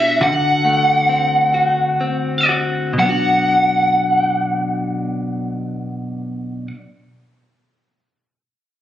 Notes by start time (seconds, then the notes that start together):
Already playing: B2 B3 D4 E5
0.00 F#4
0.21 D3 F#4 F#5
0.65 A3
1.09 C4
1.54 F#4
2.01 C4
2.49 F#4
2.93 B2
2.98 F#3 F#5
3.02 B3 D4
3.09 F#4